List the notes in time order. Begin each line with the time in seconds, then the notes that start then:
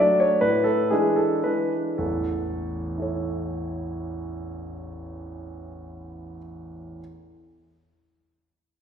0.00 F#3 A3 D4 D5
0.20 C#5
0.41 A2 B4
0.64 A4
0.90 E3 G#3 D4 G#4
1.16 A4
1.44 E3 G#3 D4 B4
1.98 A1 E2 A4
2.98 E4 A4
3.02 C#5